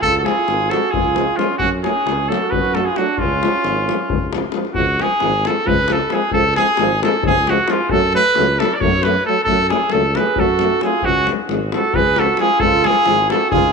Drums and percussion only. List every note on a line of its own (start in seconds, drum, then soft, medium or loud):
0.02 davul low medium
0.26 davul high medium
0.48 davul high medium
0.71 davul high medium
0.83 davul high soft
0.94 davul low loud
1.05 davul high soft
1.16 davul high medium
1.39 davul high medium
1.50 davul high soft
1.59 davul low medium
1.84 davul high medium
2.07 davul high medium
2.32 davul high medium
2.42 davul high soft
2.52 davul low medium
2.65 davul high soft
2.75 davul high medium
2.96 davul high medium
3.06 davul high soft
3.18 davul low medium
3.43 davul high medium
3.53 davul high soft
3.64 davul high medium
3.77 davul high soft
3.89 davul high medium
4.10 davul low loud
4.33 davul high medium
4.42 davul high soft
4.52 davul high medium
4.65 davul high soft
4.74 davul low medium
4.99 davul high medium
5.20 davul high medium
5.45 davul high medium
5.58 davul high soft
5.68 davul low medium
5.79 davul high soft
5.88 davul high medium
6.10 davul high medium
6.31 davul low medium
6.56 davul high medium
6.77 davul high medium
7.03 davul high medium
7.14 davul high soft
7.23 davul low loud
7.35 davul high soft
7.47 davul high medium
7.68 davul high medium
7.89 davul low medium
8.35 davul high medium
8.60 davul high medium
8.70 davul high soft
8.81 davul low loud
8.91 davul high soft
9.03 davul high medium
9.36 davul high soft
9.46 davul low medium
9.59 davul high soft
9.70 davul high medium
9.80 davul high soft
9.90 davul high medium
10.15 davul high medium
10.26 davul high soft
10.36 davul low medium
10.49 davul high soft
10.59 davul high medium
10.70 davul high soft
10.81 davul high medium
11.02 davul low medium
11.27 davul high medium
11.49 davul high medium
11.72 davul high medium
11.85 davul high soft
11.94 davul low loud
12.07 davul high soft
12.16 davul high medium
12.37 davul high medium
12.48 davul high soft
12.60 davul low medium
12.84 davul high medium
13.06 davul high medium
13.30 davul high medium
13.41 davul high soft
13.52 davul low loud
13.64 davul high soft